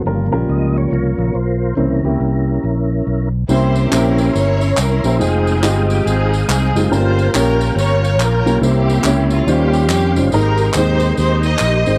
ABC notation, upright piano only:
X:1
M:4/4
L:1/8
Q:"Swing" 1/4=140
K:Cphr
V:1 name="Upright piano"
[G,DFB] [G,DFB]3 z4 | [B,D=Ec] [B,DEG]3 z4 | [B,D=EGc] z [B,DEGc]3 z2 [B,DEGc] | [A,EFcg] z [A,EFGe]3 z2 [A,EFGc] |
[=A,B,DFGB] z [B,DFGd]3 z2 [B,DFGd] | [B,D=EGc] z [B,DEGd]2 [G,D_EFc]2 z [G,DEFc] | [A,B,CEGB] z [A,CEGc]3 z2 [A,CEGc] |]
V:2 name="Upright piano" clef=bass
G,,3 z4 z | C,3 z4 z | C,3 z4 z | z8 |
G,,3 z4 z | C,3 z E,3 z | A,,3 z4 z |]